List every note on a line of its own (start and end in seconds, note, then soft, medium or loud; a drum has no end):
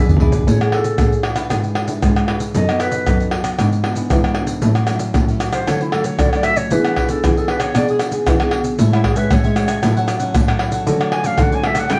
0.00 0.19 F#2 medium
0.00 0.46 B2 medium
0.00 0.16 B3 medium
0.00 0.17 D4 medium
0.00 0.17 G#4 medium
0.00 0.18 E5 medium
0.09 0.20 G#4 soft
0.09 0.21 B4 soft
0.09 0.21 D5 medium
0.09 surdo medium
0.09 pandeiro soft
0.09 maracas soft
0.17 0.45 G#2 medium
0.17 0.43 B3 medium
0.17 0.33 E4 medium
0.17 pandeiro medium
0.17 surdo medium
0.21 0.43 D4 medium
0.21 0.33 G#4 medium
0.21 0.44 G#4 medium
0.21 0.32 B4 medium
0.21 0.31 D5 medium
0.25 surdo medium
0.32 0.46 G#4 soft
0.32 0.46 B4 soft
0.32 0.45 D5 medium
0.32 pandeiro medium
0.32 maracas medium
0.32 surdo medium
0.43 surdo loud
0.47 0.92 A2 loud
0.47 0.97 A3 medium
0.47 0.57 C#4 medium
0.47 0.57 E4 medium
0.47 0.57 G#4 medium
0.47 0.72 C#5 medium
0.47 pandeiro medium
0.47 maracas medium
0.47 surdo medium
0.60 0.95 C#4 medium
0.60 0.96 E4 medium
0.60 0.96 G#4 medium
0.60 pandeiro soft
0.60 tamborim medium
0.60 maracas soft
0.72 1.22 A4 medium
0.72 pandeiro medium
0.72 tamborim medium
0.84 pandeiro medium
0.84 maracas medium
0.98 1.44 A2 medium
0.98 1.49 E3 medium
0.98 1.24 C#4 medium
0.98 1.24 E4 medium
0.98 1.24 G#4 medium
0.98 pandeiro medium
0.98 tamborim medium
0.98 maracas medium
0.98 surdo loud
1.12 pandeiro soft
1.12 maracas soft
1.23 pandeiro medium
1.23 tamborim medium
1.36 1.85 D4 medium
1.36 1.85 E4 medium
1.36 1.86 B4 medium
1.36 pandeiro medium
1.36 tamborim medium
1.36 maracas medium
1.50 1.96 G#2 medium
1.50 2.01 G#3 medium
1.50 pandeiro medium
1.50 tamborim medium
1.50 maracas medium
1.50 surdo medium
1.64 pandeiro soft
1.64 maracas soft
1.75 pandeiro medium
1.75 tamborim medium
1.88 2.25 D4 medium
1.88 2.25 E4 medium
1.88 2.25 B4 medium
1.88 pandeiro medium
1.88 maracas medium
2.02 2.48 G#2 medium
2.02 2.53 G#3 medium
2.02 pandeiro medium
2.02 tamborim medium
2.02 maracas medium
2.02 surdo loud
2.16 pandeiro soft
2.16 tamborim medium
2.16 maracas soft
2.28 2.46 D4 medium
2.28 2.46 E4 medium
2.28 2.46 B4 medium
2.28 pandeiro medium
2.28 tamborim medium
2.40 pandeiro medium
2.40 maracas medium
2.54 3.00 F#2 loud
2.54 3.05 F#3 medium
2.54 2.64 B3 medium
2.54 2.65 D#4 medium
2.54 2.65 A4 medium
2.54 2.80 D#5 medium
2.54 pandeiro medium
2.54 maracas medium
2.54 surdo medium
2.69 3.04 B3 medium
2.69 3.04 D#4 medium
2.69 3.05 A4 medium
2.69 pandeiro soft
2.69 tamborim medium
2.69 maracas soft
2.80 3.30 B4 medium
2.80 pandeiro medium
2.80 tamborim medium
2.80 maracas medium
2.92 pandeiro medium
2.92 maracas medium
3.07 3.52 F#2 medium
3.07 3.57 F#3 medium
3.07 3.41 B3 medium
3.07 3.41 D#4 medium
3.07 3.42 A4 medium
3.07 pandeiro medium
3.07 tamborim medium
3.07 maracas medium
3.07 surdo medium
3.20 pandeiro soft
3.20 maracas soft
3.31 pandeiro medium
3.31 tamborim medium
3.44 pandeiro medium
3.44 tamborim medium
3.44 maracas medium
3.59 4.04 G#2 medium
3.59 4.10 G#2 medium
3.59 3.76 E3 medium
3.59 3.76 B3 medium
3.59 3.76 D4 medium
3.59 pandeiro medium
3.59 tamborim medium
3.59 maracas medium
3.59 surdo medium
3.72 pandeiro soft
3.72 maracas soft
3.84 3.93 E3 medium
3.84 3.93 B3 medium
3.84 3.94 D4 medium
3.84 pandeiro medium
3.84 tamborim medium
3.96 4.33 E3 medium
3.96 4.33 B3 medium
3.96 4.33 D4 medium
3.96 pandeiro medium
3.96 maracas medium
4.10 4.61 G#2 medium
4.10 4.56 E3 medium
4.10 pandeiro medium
4.10 tamborim medium
4.10 maracas medium
4.10 surdo loud
4.24 pandeiro soft
4.24 tamborim medium
4.24 maracas soft
4.35 4.62 E3 medium
4.35 4.62 B3 medium
4.35 pandeiro medium
4.35 tamborim medium
4.39 4.62 D4 medium
4.47 pandeiro medium
4.47 maracas medium
4.62 5.08 A2 loud
4.62 5.14 A2 medium
4.62 4.79 F#3 medium
4.62 4.80 C#4 medium
4.62 4.80 E4 medium
4.62 pandeiro medium
4.62 maracas medium
4.62 surdo medium
4.75 pandeiro soft
4.75 tamborim medium
4.75 maracas soft
4.87 5.25 F#3 medium
4.87 5.25 C#4 medium
4.87 pandeiro medium
4.87 tamborim medium
4.87 maracas medium
4.91 5.25 E4 medium
4.99 pandeiro medium
4.99 maracas medium
5.14 5.60 A2 medium
5.14 5.65 E3 medium
5.14 pandeiro medium
5.14 tamborim medium
5.14 maracas medium
5.14 surdo loud
5.28 5.64 F#3 medium
5.28 5.64 C#4 medium
5.28 5.64 E4 medium
5.28 pandeiro soft
5.28 maracas soft
5.40 pandeiro medium
5.40 tamborim medium
5.40 maracas medium
5.53 5.70 C5 medium
5.53 pandeiro medium
5.53 tamborim medium
5.53 maracas medium
5.67 6.12 D3 medium
5.67 6.17 D3 medium
5.67 5.90 F#3 medium
5.67 5.90 A3 medium
5.67 5.90 C#4 medium
5.67 5.83 C#5 medium
5.67 pandeiro medium
5.67 tamborim medium
5.67 maracas medium
5.67 surdo medium
5.81 5.94 E4 medium
5.81 pandeiro soft
5.81 maracas soft
5.92 6.28 F#3 medium
5.92 6.28 A3 medium
5.92 6.28 C#4 medium
5.92 6.07 A4 medium
5.92 pandeiro medium
5.92 tamborim medium
6.04 6.21 C#5 medium
6.04 pandeiro medium
6.04 maracas medium
6.19 6.69 A2 medium
6.19 6.64 D3 medium
6.19 6.31 D5 medium
6.19 pandeiro medium
6.19 tamborim medium
6.19 maracas medium
6.19 surdo loud
6.29 6.38 C#5 medium
6.29 pandeiro soft
6.29 tamborim medium
6.29 maracas soft
6.34 6.68 F#3 medium
6.34 6.68 A3 medium
6.34 6.68 C#4 medium
6.34 6.45 D5 medium
6.43 6.59 E5 loud
6.43 pandeiro medium
6.43 tamborim medium
6.43 maracas medium
6.56 6.74 C#5 loud
6.56 pandeiro medium
6.56 maracas medium
6.71 7.21 E3 medium
6.71 7.16 E3 loud
6.71 7.07 B3 medium
6.71 7.07 D4 medium
6.71 7.07 G#4 medium
6.71 7.11 B4 medium
6.71 pandeiro medium
6.71 maracas medium
6.71 surdo medium
6.85 pandeiro soft
6.85 tamborim medium
6.85 maracas soft
6.96 pandeiro medium
6.96 tamborim medium
6.96 surdo medium
7.09 7.32 B3 medium
7.09 7.32 D4 medium
7.09 7.32 G#4 medium
7.09 7.27 A4 medium
7.09 pandeiro medium
7.09 maracas medium
7.24 7.73 B2 medium
7.24 7.68 E3 medium
7.24 7.40 G#4 medium
7.24 pandeiro medium
7.24 tamborim medium
7.24 maracas medium
7.24 surdo loud
7.37 7.72 B3 medium
7.37 7.72 D4 medium
7.37 7.73 G#4 medium
7.37 7.51 A4 medium
7.37 pandeiro soft
7.37 maracas soft
7.48 7.62 B4 medium
7.48 pandeiro medium
7.48 tamborim medium
7.60 7.78 C#5 medium
7.60 pandeiro medium
7.60 tamborim medium
7.60 maracas medium
7.75 8.20 B2 medium
7.75 8.25 E3 medium
7.75 8.11 B3 medium
7.75 8.11 D4 medium
7.75 8.11 G#4 medium
7.75 7.89 D5 medium
7.75 pandeiro medium
7.75 tamborim medium
7.75 maracas medium
7.75 surdo medium
7.88 7.97 G#4 medium
7.88 pandeiro soft
7.88 maracas soft
7.99 pandeiro medium
7.99 tamborim medium
7.99 maracas medium
8.12 8.35 B3 medium
8.12 8.36 D4 medium
8.12 8.36 G#4 medium
8.12 pandeiro medium
8.12 maracas medium
8.27 8.72 E3 medium
8.27 pandeiro medium
8.27 tamborim medium
8.27 maracas medium
8.27 surdo loud
8.40 8.76 B3 medium
8.40 8.76 D4 medium
8.40 8.76 G#4 medium
8.40 pandeiro soft
8.40 tamborim medium
8.40 maracas soft
8.51 pandeiro medium
8.51 tamborim medium
8.64 pandeiro medium
8.64 maracas medium
8.79 9.29 A2 medium
8.79 9.24 A2 loud
8.79 9.04 G#3 medium
8.79 9.04 C#4 medium
8.79 9.04 E4 medium
8.79 8.91 A4 soft
8.79 8.92 C#5 soft
8.79 8.92 E5 soft
8.79 8.91 G#5 medium
8.79 pandeiro medium
8.79 maracas medium
8.79 surdo medium
8.92 9.07 E4 medium
8.92 9.17 C#5 soft
8.92 9.16 E5 medium
8.92 9.15 G#5 medium
8.92 pandeiro soft
8.92 tamborim medium
8.92 maracas soft
9.04 9.19 G#4 medium
9.04 pandeiro medium
9.04 tamborim medium
9.04 surdo medium
9.15 9.39 G#3 medium
9.15 9.39 C#4 medium
9.15 9.39 E4 medium
9.15 9.35 B4 medium
9.15 9.30 C#5 medium
9.15 9.30 E5 medium
9.15 9.29 G#5 medium
9.15 pandeiro medium
9.15 maracas medium
9.30 9.76 A2 medium
9.30 9.80 E3 medium
9.30 9.43 A4 soft
9.30 9.43 C#5 soft
9.30 10.11 C#5 medium
9.30 9.44 E5 medium
9.30 9.43 G#5 medium
9.30 pandeiro medium
9.30 tamborim medium
9.30 maracas medium
9.30 surdo loud
9.44 9.79 G#3 medium
9.44 9.79 C#4 medium
9.44 9.79 E4 medium
9.44 9.56 C#5 medium
9.44 9.56 E5 medium
9.44 9.56 G#5 medium
9.44 pandeiro soft
9.44 maracas soft
9.56 muted cavaquinho stroke soft
9.56 pandeiro medium
9.56 tamborim medium
9.56 maracas medium
9.68 9.82 C#5 soft
9.68 9.82 E5 medium
9.68 9.81 G#5 medium
9.68 pandeiro medium
9.68 tamborim medium
9.68 maracas medium
9.83 10.33 A2 medium
9.83 10.28 A2 medium
9.83 10.18 F#3 medium
9.83 10.18 C#4 medium
9.83 9.95 E4 soft
9.83 10.19 E4 medium
9.83 9.96 A4 medium
9.83 9.96 C#5 medium
9.83 9.95 F#5 medium
9.83 pandeiro medium
9.83 tamborim medium
9.83 maracas medium
9.83 surdo medium
9.97 10.08 A4 medium
9.97 10.08 C#5 medium
9.97 10.08 F#5 medium
9.97 pandeiro soft
9.97 maracas soft
10.08 muted cavaquinho stroke soft
10.08 pandeiro medium
10.08 tamborim medium
10.08 maracas medium
10.20 10.44 F#3 medium
10.20 10.44 C#4 medium
10.20 10.44 E4 medium
10.20 10.47 A4 soft
10.20 10.46 C#5 medium
10.20 10.46 F#5 medium
10.20 pandeiro medium
10.20 maracas medium
10.34 10.80 A2 medium
10.34 10.85 A2 medium
10.34 pandeiro medium
10.34 tamborim medium
10.34 maracas medium
10.34 surdo loud
10.48 10.84 F#3 medium
10.48 10.84 C#4 medium
10.48 10.84 E4 medium
10.48 10.59 A4 medium
10.48 10.60 C#5 medium
10.48 10.60 F#5 medium
10.48 pandeiro soft
10.48 tamborim medium
10.48 maracas soft
10.59 10.72 E4 medium
10.59 10.73 A4 soft
10.59 10.73 C#5 medium
10.59 10.72 F#5 medium
10.59 pandeiro medium
10.59 tamborim medium
10.72 10.86 A4 medium
10.72 10.86 C#5 medium
10.72 10.86 F#5 medium
10.72 pandeiro medium
10.72 maracas medium
10.87 11.31 D3 loud
10.87 11.37 D3 medium
10.87 11.22 F#3 medium
10.87 11.23 A3 medium
10.87 11.23 C#4 medium
10.87 10.99 F#4 soft
10.87 11.00 A4 soft
10.87 11.00 C#5 medium
10.87 10.99 D5 medium
10.87 pandeiro medium
10.87 maracas medium
10.87 surdo medium
11.00 11.24 A4 medium
11.00 11.23 C#5 medium
11.00 11.22 D5 medium
11.00 pandeiro soft
11.00 tamborim medium
11.00 maracas soft
11.12 11.28 G#5 medium
11.12 pandeiro medium
11.12 tamborim medium
11.23 11.61 F#3 medium
11.23 11.61 A3 medium
11.23 11.61 C#4 medium
11.23 11.37 A4 medium
11.23 11.37 C#5 medium
11.23 11.37 D5 medium
11.23 11.43 F5 medium
11.23 pandeiro medium
11.23 maracas medium
11.38 11.89 A2 medium
11.38 11.83 D3 medium
11.38 11.50 F#4 medium
11.38 11.51 A4 medium
11.38 11.51 C#5 medium
11.38 11.50 D5 medium
11.38 pandeiro medium
11.38 tamborim medium
11.38 maracas medium
11.38 surdo loud
11.42 11.56 F#5 medium
11.52 11.63 A4 medium
11.52 11.63 C#5 medium
11.52 11.64 D5 medium
11.52 11.68 G#5 medium
11.52 pandeiro soft
11.52 maracas soft
11.64 11.80 F#3 medium
11.64 11.81 A3 medium
11.64 11.81 C#4 medium
11.64 11.80 E5 medium
11.64 muted cavaquinho stroke soft
11.64 pandeiro medium
11.64 tamborim medium
11.75 11.90 A4 medium
11.75 11.89 C#5 medium
11.75 11.89 D5 medium
11.75 11.95 F#5 medium
11.75 pandeiro medium
11.75 tamborim medium
11.75 maracas medium
11.90 12.00 C#3 medium
11.90 12.00 G3 medium
11.90 12.00 A3 medium
11.90 12.00 E4 soft
11.90 12.00 E4 medium
11.90 12.00 A4 medium
11.90 12.00 C#5 medium
11.90 12.00 G5 medium
11.90 12.00 G5 loud
11.90 pandeiro medium
11.90 tamborim medium
11.90 maracas medium
11.90 surdo medium